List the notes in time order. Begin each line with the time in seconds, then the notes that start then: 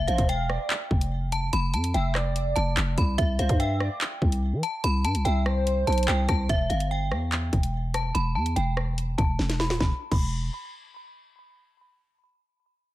0.08 A1 C5 F5, closed hi-hat
0.18 E1, kick, closed hi-hat
0.29 F5 G5, closed hi-hat
0.49 D5, cross-stick
0.70 clap, closed hi-hat
0.91 F1, kick
1.01 closed hi-hat
1.32 A5, closed hi-hat
1.53 F1 B5, closed hi-hat
1.74 F2 A5, closed hi-hat
1.84 closed hi-hat
1.94 F1 E5 G5, closed hi-hat
2.15 D5, cross-stick, clap
2.36 closed hi-hat
2.56 F1 A5, closed hi-hat
2.77 F1, clap, closed hi-hat
2.98 C2 B5, kick, closed hi-hat
3.18 C2 E5, kick, closed hi-hat
3.39 C2 C5 F5, closed hi-hat
3.49 G2, kick, closed hi-hat
3.60 E5 G5, closed hi-hat
3.80 D5, cross-stick
4.01 clap, closed hi-hat
4.22 C2, kick
4.32 closed hi-hat
4.53 E3
4.63 A5, closed hi-hat
4.84 C2 B5, closed hi-hat
5.05 G2 A5, closed hi-hat
5.15 C2, closed hi-hat
5.25 C2 E5 G5, closed hi-hat
5.46 C5, cross-stick
5.67 closed hi-hat
5.87 B1 A5, closed hi-hat
5.93 closed hi-hat
5.98 closed hi-hat
6.03 closed hi-hat
6.08 C2 G5, clap, closed hi-hat
6.29 C2 A5, kick, cross-stick, closed hi-hat
6.49 E1 E5, kick, closed hi-hat
6.70 G1 F5, closed hi-hat
6.80 closed hi-hat
6.91 G5
7.11 E2, cross-stick
7.32 clap, closed hi-hat
7.53 E1, kick, closed hi-hat
7.63 closed hi-hat
7.94 A5, cross-stick, closed hi-hat
8.15 E1 B5, closed hi-hat
8.35 E2 A5
8.46 closed hi-hat
8.56 E1 G5, closed hi-hat
8.77 cross-stick
8.98 closed hi-hat
9.18 E1 A5, kick, closed hi-hat
9.39 E1, snare
9.49 snare, closed hi-hat
9.60 B5, snare
9.70 D1, snare
9.80 E1 B5, kick, snare
10.12 E1 B5, kick, crash